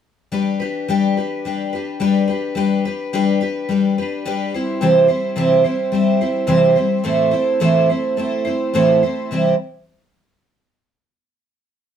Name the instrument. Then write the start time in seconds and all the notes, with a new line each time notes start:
twelve-string acoustic guitar
0.32 G3 D4 G4 B4
0.60 D4 G4 B4
0.88 G3 D4 G4 B4
1.17 D4 G4 B4
1.45 G3 D4 G4 B4
1.73 D4 G4 B4
2.00 G3 D4 G4 B4
2.28 D4 G4 B4
2.55 G3 D4 G4 B4
2.85 D4 G4 B4
3.13 G3 D4 G4 B4
3.41 D4 G4 B4
3.69 G3 D4 G4 B4
3.98 D4 G4 B4
4.25 G3 D4 G4 B4
4.54 G3 C4 E4 C5
4.81 C3 E3 G3 C4 E4 C5
5.08 G3 C4 E4 C5
5.36 C3 E3 G3 C4 E4 C5
5.64 G3 C4 E4 C5
5.92 G3 C4 E4 C5
6.21 G3 C4 E4 C5
6.47 C3 E3 G3 C4 E4 C5
6.75 G3 C4 E4 C5
7.04 A2 E3 A3 C4 E4 C5
7.31 A3 C4 E4 C5
7.60 A2 E3 A3 C4 E4 C5
7.90 A3 C4 E4 C5
8.17 A3 C4 E4 C5
8.45 A3 C4 E4 C5
8.74 A2 E3 A3 C4 E4 C5
9.03 A3 C4 E4 C5
9.31 C3 E3 G3 C4 E4 C5